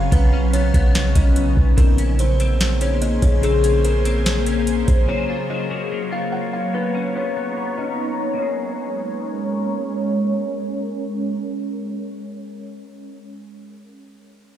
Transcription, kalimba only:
0.00 0.11 F5 medium
0.13 0.51 B4 loud
0.53 1.12 C#5 medium
1.16 1.35 D#5 medium
1.78 2.17 A#4 medium
2.20 2.78 C5 medium
2.81 3.01 C#5 medium
3.02 3.22 D#5 medium
3.22 3.42 C#5 medium
3.44 3.82 G#4 loud
3.85 4.84 A#4 medium
4.87 5.07 C5 medium
5.09 5.48 C#5 medium
5.50 6.08 D#5 medium
6.13 6.32 F5 medium
6.32 6.52 F#5 medium
6.53 6.73 F5 medium
6.75 7.13 B4 medium
7.15 7.74 C#5 medium
7.78 7.98 D#5 medium
8.40 9.60 C#5 medium

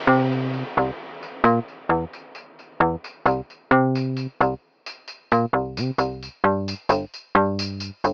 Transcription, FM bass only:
0.07 0.63 C3 loud
0.77 0.91 C2 medium
1.44 1.59 A#2 loud
1.89 2.05 E2 medium
2.80 2.96 E2 medium
3.26 3.41 C2 medium
3.71 4.27 C3 loud
4.41 4.54 C2 medium
5.32 5.46 A#2 medium
5.53 5.79 C2 medium
5.77 5.91 C3 loud
5.98 6.29 C2 medium
6.44 6.74 G2 medium
6.89 7.05 G1 medium
7.35 7.91 G2 loud
8.04 8.13 G1 medium

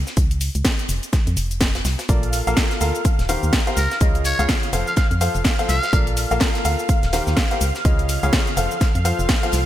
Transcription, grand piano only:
2.09 2.44 A#3 medium
2.09 2.44 F4 medium
2.09 2.44 A4 medium
2.09 2.44 A#4 medium
2.09 2.44 D5 medium
2.47 2.79 A#3 medium
2.47 2.79 F4 medium
2.47 2.79 A4 medium
2.47 2.79 A#4 medium
2.47 2.79 F5 loud
2.81 2.99 F4 medium
2.81 2.99 A4 medium
2.81 2.99 A#4 medium
2.81 2.99 F5 medium
3.29 3.56 D#3 medium
3.29 3.56 G4 medium
3.29 3.56 A#4 medium
3.29 3.56 C5 medium
3.29 3.56 F5 loud
3.67 3.76 G4 medium
3.67 3.76 A#4 medium
3.67 3.76 C5 medium
3.67 3.76 F5 loud
4.01 4.36 C#3 medium
4.01 4.36 F4 medium
4.01 4.36 G#4 medium
4.01 4.36 C#5 medium
4.01 4.36 D#5 medium
4.39 4.71 C#3 medium
4.39 4.71 F4 medium
4.39 4.71 G#4 medium
4.39 4.71 C#5 medium
4.39 4.71 F5 loud
4.73 4.91 F3 medium
4.73 4.91 F4 medium
4.73 4.91 A4 medium
4.73 4.91 C5 medium
4.73 4.91 F5 medium
5.21 5.48 F3 medium
5.21 5.48 F4 medium
5.21 5.48 A4 medium
5.21 5.48 C5 medium
5.21 5.48 F5 loud
5.59 5.74 F3 medium
5.59 5.74 F4 medium
5.59 5.74 A4 medium
5.59 5.74 C5 medium
5.59 5.74 F5 loud
5.93 6.28 A#3 medium
5.93 6.28 F4 medium
5.93 6.28 A4 medium
5.93 6.28 A#4 medium
5.93 6.28 D5 medium
6.31 6.63 A#3 loud
6.31 6.63 F4 medium
6.31 6.63 A4 medium
6.31 6.63 A#4 medium
6.31 6.63 F5 loud
6.65 6.83 F4 medium
6.65 6.83 A4 medium
6.65 6.83 A#4 medium
6.65 6.83 F5 loud
7.13 7.40 D#3 medium
7.13 7.40 G4 medium
7.13 7.40 A#4 medium
7.13 7.40 C5 medium
7.13 7.40 F5 medium
7.51 7.60 G4 medium
7.51 7.60 A#4 medium
7.51 7.60 C5 medium
7.51 7.60 F5 loud
7.85 8.20 C#3 medium
7.85 8.20 F4 medium
7.85 8.20 G#4 medium
7.85 8.20 C#5 medium
7.85 8.20 D#5 medium
8.23 8.55 C#3 loud
8.23 8.55 F4 medium
8.23 8.55 G#4 medium
8.23 8.55 C#5 medium
8.23 8.55 F5 loud
8.57 8.75 F3 medium
8.57 8.75 F4 medium
8.57 8.75 A4 medium
8.57 8.75 C5 medium
8.57 8.75 F5 medium
9.05 9.32 F3 medium
9.05 9.32 F4 medium
9.05 9.32 A4 medium
9.05 9.32 C5 medium
9.05 9.32 F5 loud
9.43 9.58 F3 medium
9.43 9.58 F4 medium
9.43 9.58 A4 medium
9.43 9.58 C5 medium
9.43 9.58 F5 loud

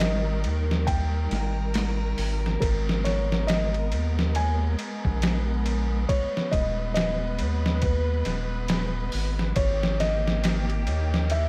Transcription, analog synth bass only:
0.00 0.46 G#1 loud
0.45 1.28 D#2 medium
1.31 2.15 G#1 medium
2.18 2.57 G#1 medium
2.62 3.94 G#1 loud
3.92 4.76 D#2 loud
5.05 6.06 A#1 loud
6.53 7.41 D#1 loud
7.40 8.23 D#2 loud
8.26 9.10 D#1 medium
9.14 9.53 G#1 medium
9.56 10.88 G#1 loud
10.87 11.49 D#2 medium

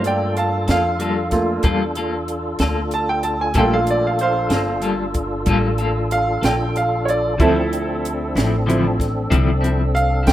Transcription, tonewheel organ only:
0.04 3.53 D4 medium
0.04 3.53 F4 medium
0.04 3.53 A4 medium
3.55 7.36 D4 medium
3.55 7.35 F4 medium
3.55 7.36 A4 medium
7.41 10.33 C4 medium
7.41 10.33 D4 medium
7.41 10.33 A4 medium

